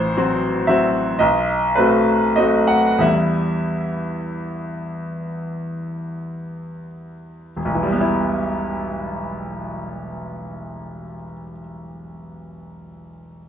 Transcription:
0, 0, Header, 1, 2, 480
1, 0, Start_track
1, 0, Key_signature, 1, "minor"
1, 0, Tempo, 1067616
1, 798, Tempo, 1255230
1, 1278, Time_signature, 6, 3, 24, 8
1, 1278, Tempo, 1379310
1, 1758, Tempo, 1459854
1, 2238, Tempo, 1675978
1, 3678, Tempo, 1704545
1, 4407, End_track
2, 0, Start_track
2, 0, Title_t, "Grand piano"
2, 0, Program_c, 0, 0
2, 0, Control_c, 0, 64, 127
2, 0, Note_on_c, 0, 33, 62
2, 0, Note_on_c, 0, 72, 83
2, 68, Note_off_c, 0, 33, 0
2, 75, Note_on_c, 0, 54, 42
2, 78, Note_on_c, 0, 60, 44
2, 79, Note_on_c, 0, 66, 48
2, 289, Note_off_c, 0, 54, 0
2, 290, Note_off_c, 0, 60, 0
2, 291, Note_off_c, 0, 66, 0
2, 302, Note_on_c, 0, 76, 75
2, 304, Note_off_c, 0, 72, 0
2, 308, Note_on_c, 0, 54, 40
2, 311, Note_on_c, 0, 60, 42
2, 312, Note_on_c, 0, 66, 50
2, 528, Note_off_c, 0, 54, 0
2, 529, Note_off_c, 0, 60, 0
2, 530, Note_off_c, 0, 66, 0
2, 534, Note_on_c, 0, 75, 62
2, 541, Note_on_c, 0, 35, 58
2, 543, Note_off_c, 0, 76, 0
2, 555, Control_c, 0, 64, 0
2, 647, Control_c, 0, 64, 127
2, 787, Note_off_c, 0, 35, 0
2, 789, Note_on_c, 0, 71, 64
2, 792, Note_off_c, 0, 75, 0
2, 798, Note_on_c, 0, 57, 39
2, 798, Note_on_c, 0, 60, 37
2, 802, Note_on_c, 0, 66, 40
2, 1014, Note_off_c, 0, 57, 0
2, 1014, Note_off_c, 0, 60, 0
2, 1015, Note_off_c, 0, 66, 0
2, 1021, Note_on_c, 0, 75, 61
2, 1025, Note_off_c, 0, 71, 0
2, 1027, Note_on_c, 0, 57, 37
2, 1029, Note_on_c, 0, 60, 36
2, 1031, Note_on_c, 0, 66, 42
2, 1142, Note_on_c, 0, 78, 59
2, 1147, Note_off_c, 0, 75, 0
2, 1260, Note_on_c, 0, 40, 47
2, 1261, Note_off_c, 0, 57, 0
2, 1263, Note_off_c, 0, 60, 0
2, 1263, Note_off_c, 0, 66, 0
2, 1263, Note_on_c, 0, 55, 33
2, 1269, Note_on_c, 0, 59, 34
2, 1270, Note_on_c, 0, 76, 56
2, 1273, Note_off_c, 0, 78, 0
2, 1273, Note_on_c, 0, 64, 35
2, 1286, Control_c, 0, 64, 0
2, 1374, Control_c, 0, 64, 127
2, 2474, Note_off_c, 0, 76, 0
2, 2705, Note_off_c, 0, 40, 0
2, 2706, Note_off_c, 0, 55, 0
2, 2708, Note_off_c, 0, 59, 0
2, 2710, Note_off_c, 0, 64, 0
2, 2724, Note_on_c, 0, 28, 46
2, 2730, Control_c, 0, 64, 0
2, 2749, Note_on_c, 0, 35, 42
2, 2774, Note_on_c, 0, 52, 40
2, 2800, Note_on_c, 0, 55, 40
2, 2808, Control_c, 0, 64, 127
2, 2826, Note_on_c, 0, 59, 40
2, 2851, Note_on_c, 0, 64, 41
2, 3750, Note_off_c, 0, 28, 0
2, 3775, Note_off_c, 0, 35, 0
2, 3799, Note_off_c, 0, 52, 0
2, 3825, Note_off_c, 0, 55, 0
2, 3851, Note_off_c, 0, 59, 0
2, 3876, Note_off_c, 0, 64, 0
2, 4407, End_track
0, 0, End_of_file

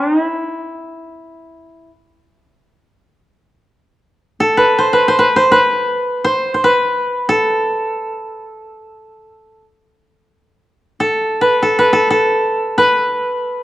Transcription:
0, 0, Header, 1, 2, 480
1, 0, Start_track
1, 0, Tempo, 500000
1, 13087, End_track
2, 0, Start_track
2, 0, Title_t, "Koto"
2, 0, Program_c, 0, 107
2, 0, Note_on_c, 0, 60, 63
2, 221, Note_off_c, 0, 60, 0
2, 221, Note_on_c, 0, 64, 63
2, 1808, Note_off_c, 0, 64, 0
2, 4226, Note_on_c, 0, 69, 78
2, 4390, Note_on_c, 0, 71, 77
2, 4594, Note_on_c, 0, 72, 79
2, 4652, Note_off_c, 0, 71, 0
2, 4734, Note_on_c, 0, 71, 73
2, 4792, Note_off_c, 0, 72, 0
2, 4879, Note_on_c, 0, 72, 78
2, 4936, Note_off_c, 0, 71, 0
2, 4980, Note_on_c, 0, 71, 77
2, 5038, Note_off_c, 0, 72, 0
2, 5148, Note_on_c, 0, 72, 82
2, 5206, Note_off_c, 0, 71, 0
2, 5294, Note_on_c, 0, 71, 87
2, 5352, Note_off_c, 0, 72, 0
2, 5994, Note_on_c, 0, 72, 86
2, 6052, Note_off_c, 0, 71, 0
2, 6053, Note_off_c, 0, 69, 0
2, 6276, Note_off_c, 0, 72, 0
2, 6280, Note_on_c, 0, 72, 54
2, 6374, Note_on_c, 0, 71, 83
2, 6432, Note_off_c, 0, 72, 0
2, 6997, Note_on_c, 0, 69, 73
2, 8079, Note_off_c, 0, 71, 0
2, 9244, Note_off_c, 0, 69, 0
2, 10561, Note_on_c, 0, 69, 75
2, 10957, Note_on_c, 0, 71, 77
2, 11157, Note_off_c, 0, 69, 0
2, 11160, Note_on_c, 0, 69, 72
2, 11311, Note_off_c, 0, 71, 0
2, 11315, Note_on_c, 0, 71, 81
2, 11447, Note_off_c, 0, 69, 0
2, 11451, Note_on_c, 0, 69, 78
2, 11615, Note_off_c, 0, 69, 0
2, 11619, Note_on_c, 0, 69, 76
2, 12262, Note_off_c, 0, 71, 0
2, 12266, Note_on_c, 0, 71, 81
2, 13087, Note_off_c, 0, 69, 0
2, 13087, Note_off_c, 0, 71, 0
2, 13087, End_track
0, 0, End_of_file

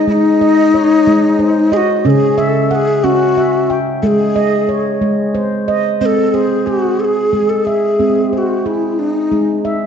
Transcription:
0, 0, Header, 1, 3, 480
1, 0, Start_track
1, 0, Tempo, 660066
1, 57, Time_signature, 6, 3, 24, 8
1, 7174, End_track
2, 0, Start_track
2, 0, Title_t, "Handpan"
2, 0, Program_c, 0, 114
2, 0, Note_on_c, 0, 68, 64
2, 0, Note_on_c, 0, 75, 65
2, 54, Note_on_c, 0, 56, 75
2, 291, Note_off_c, 0, 75, 0
2, 296, Note_off_c, 0, 68, 0
2, 300, Note_on_c, 0, 75, 65
2, 540, Note_on_c, 0, 73, 61
2, 769, Note_off_c, 0, 56, 0
2, 777, Note_on_c, 0, 56, 82
2, 1011, Note_on_c, 0, 72, 63
2, 1016, Note_off_c, 0, 75, 0
2, 1249, Note_on_c, 0, 75, 63
2, 1255, Note_off_c, 0, 56, 0
2, 1256, Note_off_c, 0, 73, 0
2, 1490, Note_on_c, 0, 61, 87
2, 1495, Note_on_c, 0, 49, 78
2, 1728, Note_on_c, 0, 76, 69
2, 1730, Note_off_c, 0, 75, 0
2, 1731, Note_off_c, 0, 72, 0
2, 1969, Note_on_c, 0, 78, 65
2, 1970, Note_off_c, 0, 61, 0
2, 2213, Note_on_c, 0, 61, 79
2, 2444, Note_off_c, 0, 76, 0
2, 2453, Note_on_c, 0, 76, 67
2, 2689, Note_off_c, 0, 78, 0
2, 2690, Note_on_c, 0, 79, 63
2, 2691, Note_off_c, 0, 61, 0
2, 2902, Note_off_c, 0, 49, 0
2, 2931, Note_on_c, 0, 56, 86
2, 3169, Note_on_c, 0, 75, 68
2, 3170, Note_off_c, 0, 79, 0
2, 3171, Note_off_c, 0, 76, 0
2, 3408, Note_on_c, 0, 73, 59
2, 3410, Note_off_c, 0, 56, 0
2, 3647, Note_on_c, 0, 56, 79
2, 3887, Note_on_c, 0, 72, 64
2, 3889, Note_off_c, 0, 75, 0
2, 4128, Note_off_c, 0, 56, 0
2, 4129, Note_off_c, 0, 73, 0
2, 4131, Note_on_c, 0, 75, 63
2, 4370, Note_on_c, 0, 56, 64
2, 4372, Note_on_c, 0, 60, 67
2, 4600, Note_off_c, 0, 72, 0
2, 4609, Note_on_c, 0, 72, 54
2, 4610, Note_off_c, 0, 75, 0
2, 4851, Note_off_c, 0, 60, 0
2, 4851, Note_on_c, 0, 68, 64
2, 5322, Note_off_c, 0, 56, 0
2, 5322, Note_off_c, 0, 68, 0
2, 5330, Note_off_c, 0, 72, 0
2, 5330, Note_on_c, 0, 68, 52
2, 5331, Note_on_c, 0, 56, 64
2, 5576, Note_on_c, 0, 76, 53
2, 5807, Note_off_c, 0, 56, 0
2, 5815, Note_on_c, 0, 56, 61
2, 5815, Note_on_c, 0, 60, 67
2, 6052, Note_off_c, 0, 68, 0
2, 6055, Note_on_c, 0, 72, 52
2, 6294, Note_off_c, 0, 60, 0
2, 6295, Note_off_c, 0, 76, 0
2, 6296, Note_on_c, 0, 68, 61
2, 6768, Note_off_c, 0, 56, 0
2, 6770, Note_off_c, 0, 68, 0
2, 6776, Note_off_c, 0, 72, 0
2, 6777, Note_on_c, 0, 56, 64
2, 6778, Note_on_c, 0, 68, 52
2, 7016, Note_on_c, 0, 76, 55
2, 7174, Note_off_c, 0, 56, 0
2, 7174, Note_off_c, 0, 68, 0
2, 7174, Note_off_c, 0, 76, 0
2, 7174, End_track
3, 0, Start_track
3, 0, Title_t, "Native American-style wooden flute"
3, 0, Program_c, 1, 77
3, 63, Note_on_c, 1, 64, 113
3, 89, Note_on_c, 1, 63, 123
3, 96, Note_off_c, 1, 64, 0
3, 1260, Note_on_c, 1, 68, 81
3, 1271, Note_off_c, 1, 63, 0
3, 1285, Note_on_c, 1, 66, 88
3, 1293, Note_off_c, 1, 68, 0
3, 1497, Note_on_c, 1, 69, 88
3, 1508, Note_off_c, 1, 66, 0
3, 1528, Note_on_c, 1, 68, 95
3, 1535, Note_off_c, 1, 69, 0
3, 1735, Note_on_c, 1, 69, 81
3, 1746, Note_off_c, 1, 68, 0
3, 1971, Note_off_c, 1, 69, 0
3, 1971, Note_on_c, 1, 69, 88
3, 1998, Note_on_c, 1, 68, 96
3, 2006, Note_off_c, 1, 69, 0
3, 2210, Note_on_c, 1, 66, 98
3, 2221, Note_off_c, 1, 68, 0
3, 2735, Note_off_c, 1, 66, 0
3, 2928, Note_on_c, 1, 69, 78
3, 2958, Note_on_c, 1, 68, 85
3, 2965, Note_off_c, 1, 69, 0
3, 3619, Note_off_c, 1, 68, 0
3, 4373, Note_on_c, 1, 72, 82
3, 4404, Note_on_c, 1, 69, 89
3, 4411, Note_off_c, 1, 72, 0
3, 4610, Note_on_c, 1, 68, 77
3, 4621, Note_off_c, 1, 69, 0
3, 4846, Note_on_c, 1, 66, 79
3, 4857, Note_off_c, 1, 68, 0
3, 5090, Note_on_c, 1, 69, 75
3, 5101, Note_off_c, 1, 66, 0
3, 5124, Note_on_c, 1, 68, 81
3, 5131, Note_off_c, 1, 69, 0
3, 5450, Note_on_c, 1, 69, 74
3, 5461, Note_off_c, 1, 68, 0
3, 5565, Note_on_c, 1, 68, 79
3, 5576, Note_off_c, 1, 69, 0
3, 6059, Note_off_c, 1, 68, 0
3, 6059, Note_on_c, 1, 68, 65
3, 6092, Note_on_c, 1, 66, 71
3, 6099, Note_off_c, 1, 68, 0
3, 6300, Note_on_c, 1, 64, 70
3, 6311, Note_off_c, 1, 66, 0
3, 6538, Note_on_c, 1, 63, 64
3, 6549, Note_off_c, 1, 64, 0
3, 7077, Note_off_c, 1, 63, 0
3, 7174, End_track
0, 0, End_of_file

